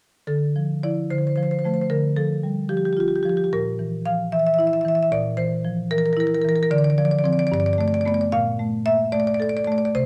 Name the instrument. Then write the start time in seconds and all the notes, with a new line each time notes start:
marimba
0.27 D3 A4
0.56 F3
0.83 F3 E4 D5
1.10 D3 C5
1.18 C5
1.27 C5
1.36 F3 C5
1.43 C5
1.51 C5
1.59 C5
1.64 F3 A3 C5
1.74 C5
1.81 C5
1.90 D3 A#4
2.16 F3 A4
2.43 G3
2.69 F3 G4
2.77 G4
2.85 G4
2.93 F4 G4
3.00 G4
3.08 G4
3.16 G4
3.23 F3 G4
3.29 G4
3.37 G4
3.44 G4
3.53 A#2 A#4
3.79 E3
4.06 F3 F5
4.32 E3 E5
4.39 E5
4.47 E5
4.54 E5
4.59 E4 E5
4.67 E5
4.73 E5
4.81 E3 E5
4.88 E5
4.95 E5
5.03 E5
5.12 A#2 D5
5.37 E3 C5
5.65 F3
5.91 E3 A#4
5.98 A#4
6.06 A#4
6.13 E4 A#4
6.20 A#4
6.27 A#4
6.35 A#4
6.42 E3 A#4
6.49 A#4
6.56 A#4
6.63 A#4
6.71 D3 D5
6.78 D5
6.84 D5
6.90 D5
6.98 F3 D5
7.05 D5
7.11 D5
7.19 D5
7.24 F3 C4 D5
7.33 D5
7.39 D5
7.47 D5
7.52 G2 D5
7.60 D5
7.66 D5
7.73 D5
7.78 A3 D5
7.88 D5
7.94 D5
8.01 D5
8.06 A3 B3 D5
8.14 D5
8.21 D5
8.32 A#2 F5
8.59 A3
8.86 A#3 E5
9.12 A3 D5
9.20 D5
9.27 D5
9.34 D5
9.40 A4 D5
9.49 D5
9.57 D5
9.64 A3 D5
9.72 D5
9.78 D5
9.85 D5
9.95 C3 C5